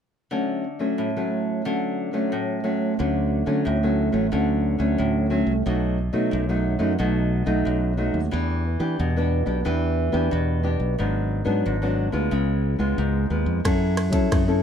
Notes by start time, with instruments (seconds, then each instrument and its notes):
0.31 nylon-string guitar D3 F#3 A3 C#4
0.79 nylon-string guitar F#3 A3 C#4
0.98 nylon-string guitar A2
1.16 nylon-string guitar F#3 A3 C#4
1.65 nylon-string guitar D3 F#3 A3 C#4
2.13 nylon-string guitar F#3 A3 C#4
2.32 nylon-string guitar A2
2.64 nylon-string guitar F#3 A3 C#4
2.99 fingered electric bass D2, nylon-string guitar D3 F#3 A3 C#4
3.46 fingered electric bass D3, nylon-string guitar F#3 A3 C#4
3.65 fingered electric bass D2, nylon-string guitar A2
3.83 nylon-string guitar F#3 A3 C#4
4.12 fingered electric bass A1, nylon-string guitar F#3 A3 C#4
4.32 fingered electric bass D2, nylon-string guitar D3 F#3 A3 C#4
4.79 fingered electric bass D2, nylon-string guitar F#3 A3 C#4
4.98 fingered electric bass D2, nylon-string guitar A2
5.30 nylon-string guitar F#3 A3 C#4
5.47 fingered electric bass C2
5.66 fingered electric bass B1, nylon-string guitar B2 F#3 A3 D#4
6.13 fingered electric bass B2, nylon-string guitar F#3 A3 D#4
6.31 fingered electric bass B1, nylon-string guitar F#2
6.49 nylon-string guitar F#3 A3 D#4
6.79 fingered electric bass F#2, nylon-string guitar F#3 A3 D#4
6.99 fingered electric bass B1, nylon-string guitar B2 F#3 A3 D#4
7.46 fingered electric bass B1, nylon-string guitar F#3 A3 D#4
7.65 fingered electric bass B1, nylon-string guitar F#2
7.97 nylon-string guitar F#3 A3 D#4
8.14 fingered electric bass D#2
8.31 fingered electric bass E2, nylon-string guitar E3 B3 D4 G4
8.79 fingered electric bass E3, nylon-string guitar B3 D4 G4
9.00 fingered electric bass E2, nylon-string guitar B2
9.17 nylon-string guitar B3 D4 G4
9.46 fingered electric bass B1, nylon-string guitar B3 D4 G4
9.65 fingered electric bass E2, nylon-string guitar E3 B3 D4 G4
10.12 fingered electric bass E2, nylon-string guitar B3 D4 G4
10.31 fingered electric bass E2, nylon-string guitar B2
10.63 nylon-string guitar B3 D4 G4
10.80 fingered electric bass B1
10.99 fingered electric bass G#1, nylon-string guitar G#2 F#3 B3 D4
11.45 fingered electric bass G#2, nylon-string guitar F#3 B3 D4
11.66 fingered electric bass G#1, nylon-string guitar G#2
11.82 nylon-string guitar F#3 B3 D4
12.12 fingered electric bass D2, nylon-string guitar G#3 B3 F4
12.31 fingered electric bass C#2, nylon-string guitar C#3
12.79 fingered electric bass C#2, nylon-string guitar G#3 B3 F4
12.98 fingered electric bass C#2, nylon-string guitar G#2
13.30 fingered electric bass D#2, nylon-string guitar G#3 B3 F4
13.46 fingered electric bass F2
13.65 fingered electric bass F#2, nylon-string guitar F#3 C#4 E4 A4, kick, cross-stick, ride
13.97 cross-stick, ride
14.10 fingered electric bass F#3, nylon-string guitar C#4 E4 A4, kick, ride
14.31 fingered electric bass F#2, nylon-string guitar C#3, kick, cross-stick, ride
14.48 nylon-string guitar C#4 E4 A4